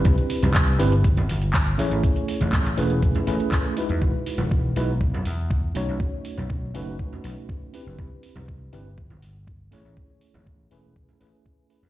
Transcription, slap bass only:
\new Staff \with { instrumentName = "Slap bass" } { \clef bass \time 4/4 \key a \lydian \tempo 4 = 121 c,16 r8 c,8. g,,8. g,,16 g,,4 a,,16 a,,16 | r8. a,,8. e,,8. r16 a,,16 r4 e,16 | e,,16 r8 e,,8. b,,8. b,,16 e,4 b,,16 b,,16 | r8. b,,8. fis,,8. r16 b,,16 r4 fis,,16 |
c,16 r8 c,8. g,,8. g,,16 g,,4 a,,16 a,,16 | r8. a,,8. e,,8. r16 a,,16 r4 e,16 | }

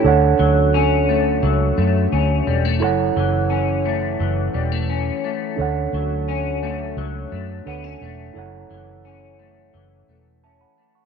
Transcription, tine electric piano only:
\new Staff \with { instrumentName = "Tine electric piano" } { \time 4/4 \key d \major \tempo 4 = 87 << { r1 | r1 | r1 | r2. <e'' a''>16 <fis'' b''>8 <fis'' cis'''>16 | } \\ { <d' a' cis'' fis''>1 | <e' a' cis'' fis''>1 | <d' a' cis'' fis''>2. <d' a' cis'' fis''>4 | <e' a' cis'' fis''>1 | } >> }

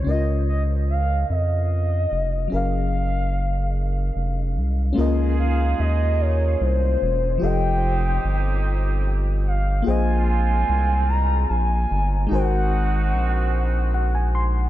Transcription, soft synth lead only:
\new Staff \with { instrumentName = "Soft synth lead" } { \time 6/8 \key des \lydian \tempo 4. = 49 ees''8 ees''8 f''8 ees''4. | f''2 r4 | r8 f''8 ees''8 des''8 c''4 | g''2 r8 f''8 |
aes''8 aes''4 bes''8 aes''4 | ges''2~ ges''8 r8 | }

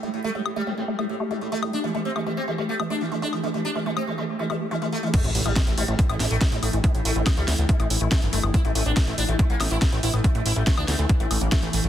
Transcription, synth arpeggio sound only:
\new Staff \with { instrumentName = "Synth arpeggio sound" } { \time 4/4 \key c \mixolydian \tempo 4 = 141 a16 r16 a16 a16 r16 a16 a16 r16 a16 a16 r16 a16 a16 r16 a16 a16 | r16 a16 a16 r16 a16 a16 r16 a16 a16 r16 a16 a16 r16 a16 a16 r16 | a16 a16 r16 a16 a16 r16 a16 a16 r16 a16 a16 r16 a16 a16 r16 a16 | a16 a16 r16 a16 a16 r16 a16 a16 r16 a16 a16 r16 a16 a16 r16 a16 |
a16 r16 a16 a16 r16 a16 a16 r16 a16 a16 r16 a16 a16 r16 a16 a16 | r16 a16 a16 r16 a16 a16 r16 a16 a16 r16 a16 a16 r16 a16 a16 r16 | a16 a16 r16 a16 a16 r16 a16 a16 r16 a16 a16 bes16 a16 a16 r16 a16 | }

